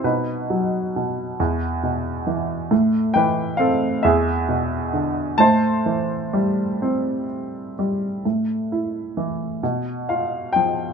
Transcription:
X:1
M:6/8
L:1/8
Q:3/8=44
K:Am
V:1 name="Upright piano"
[^DB]4 z2 | z [Bg] [Af] [^Ge]3 | [ca]4 z2 | z4 f g |]
V:2 name="Upright piano" clef=bass
B,, ^F, B,, E,, B,, E, | A,, E, C E,, B,, D, | A,, E, G, C2 G, | A,, E E, B,, F F, |]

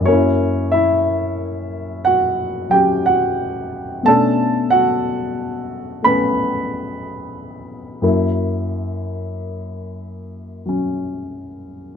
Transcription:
X:1
M:4/4
L:1/8
Q:"Swing" 1/4=60
K:F#phr
V:1 name="Grand piano"
[Cc] [Ee]3 [Ff] [Gg] [Ff]2 | [Aa] [Ff]3 [Bb]4 | z8 |]
V:2 name="Grand piano"
[F,,F,^A,E]4- [F,,F,A,E] [F,C]3 | [B,,A,CD]4 [A,B,C]4 | [F,,F,^A,E]4- [F,,F,A,E] [F,C]3 |]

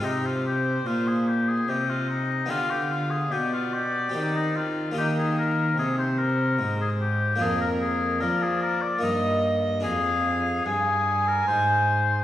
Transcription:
X:1
M:3/4
L:1/16
Q:1/4=74
K:Cm
V:1 name="Violin"
c8 e4 | f4 d8 | B4 c8 | B4 d4 e4 |
f4 a8 |]
V:2 name="Oboe"
E F G2 F A G A G F E2 | F G F A G F G2 G E F2 | G A B2 A c B3 A G2 | A B A2 B A B d e2 z2 |
A4 A3 B c4 |]
V:3 name="Harpsichord"
[CEG]12 | [=B,DG]8 [CG]4 | [B,EG]12 | [B,DF]8 [B,EB]4 |
[DA]12 |]
V:4 name="Harpsichord" clef=bass
C,4 B,,4 C,4 | D,4 =B,,4 E,4 | E,4 C,4 A,,4 | F,,4 F,4 G,,4 |
F,,4 G,,4 A,,4 |]
V:5 name="Cello" clef=bass
C,4 B,,4 C,4 | D,4 =B,,4 E,4 | E,4 C,4 A,,4 | F,,4 F,4 G,,4 |
F,,4 G,,4 A,,4 |]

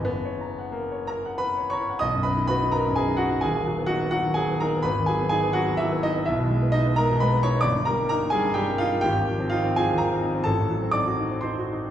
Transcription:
X:1
M:3/4
L:1/16
Q:1/4=127
K:B
V:1 name="Grand piano"
B,4 A,2 [Aa]2 [Bb]2 [cc']2 | [dd']2 [Bb]2 [Bb]2 [Aa]2 [Gg]2 [Ff]2 | [Gg]4 [Ff]2 [Ff]2 [Gg]2 [Aa]2 | [Bb]2 [Gg]2 [Gg]2 [Ff]2 [Ee]2 [Dd]2 |
[Ee]4 [Dd]2 [Aa]2 [Bb]2 [cc']2 | [K:Eb] [dd']2 [Bb]2 [Bb]2 [Aa]2 [Gg]2 [Ff]2 | [Gg]4 [Ff]2 [Aa]2 [Bb]2 z2 | [=A=a]4 [dd']4 [cc']4 |]
V:2 name="Grand piano"
F,,, c a f2 c a f2 c a f | B,,, F,, B, D F D B, F,, B, D2 D | [D,,,D,,] D, F, B, D B, F, D, F, B, D B, | G,,, D,, F, B, D B, F, D,, F, B,2 B, |
B,,, B,, G, B,2 B, G, B,, G, B, D B, | [K:Eb] G,,, G,, G, B, E B, G, G,, G, B, E B, | A,,, E,, F, C E C F, E,, F, C E C | =A,,, =A,, ^F, C E ^F E C E F E C |]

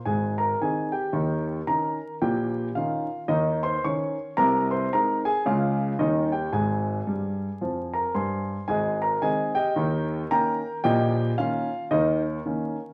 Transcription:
X:1
M:4/4
L:1/8
Q:"Swing" 1/4=111
K:Ab
V:1 name="Grand piano"
[Aa] [Bb] [Aa] [Gg]3 [Bb]2 | [Gg]2 [Ff]2 [Ee] [cc'] [dd']2 | [Bb] [cc'] [Bb] [Aa] [Ff]2 [Ee] [Gg] | [Aa]4- [Aa] [Bb] [cac']2 |
[Aea] [Bb] [Aea] [Geg]3 [Bgb]2 | [Geg]2 [Ff]2 [EBe] z3 |]
V:2 name="Grand piano" clef=bass
[A,,,A,,]2 [E,CE]2 [E,,E,]2 [E,DE]2 | [B,,,B,,]2 [E,DE]2 [E,,E,]2 [E,DE]2 | [C,,C,]2 [A,CE]2 [D,,D,A,D]2 [E,,E,G,D]2 | [A,,,A,,]2 [G,,G,]2 [F,,F,]2 [G,,G,]2 |
[A,,,A,,]2 [E,A,C]2 [E,,E,]2 [E,B,D]2 | [B,,,B,,]2 [E,B,D]2 [E,,E,]2 [E,B,D]2 |]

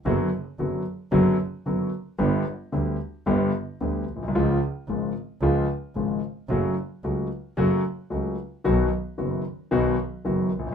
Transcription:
X:1
M:4/4
L:1/16
Q:1/4=112
K:Bdor
V:1 name="Grand piano" clef=bass
[F,,D,F,B,F]2 z2 [F,,D,F,B,F]2 z2 [F,,D,F,B,F]2 z2 [F,,D,F,B,F]2 z2 | [=G,,,=G,,D,=G,B,=G]2 z2 [D,,D,G,B,G]2 z2 [G,,,G,,D,G,B,G]2 z2 [D,,D,G,B,G]2 z/2 ^A,,,/2 B,,,/2 ^B,,,/2 | [C,,C,^E,G,^E]2 z2 [G,,,G,,C,E,G,E]2 z2 [C,,C,E,G,E]2 z2 [G,,,G,,C,E,G,E]2 z2 | [F,,C,F,A,F]2 z2 [C,,C,F,A,F]2 z2 [F,,C,F,A,F]2 z2 [C,,C,F,A,F]2 z2 |
[B,,,B,,^D,F,B,F]2 z2 [F,,,F,,D,F,B,F]2 z2 [B,,,B,,D,F,B,F]2 z2 [F,,,F,,D,F,B,F]2 z/2 ^A,,,/2 B,,,/2 z/2 |]
V:2 name="Double bass" clef=bass
F,,,2 z2 F,,,2 z2 F,,,2 z2 F,,,2 z2 | =G,,,2 z2 D,,2 z2 G,,,2 z2 D,,2 B,,,2 | C,,2 z2 G,,,2 z2 C,,2 z2 G,,,2 z2 | F,,,2 z2 C,,2 z2 F,,,2 z2 C,,2 z2 |
B,,,2 z2 F,,,2 z2 B,,,2 z2 F,,,2 B,,,2 |]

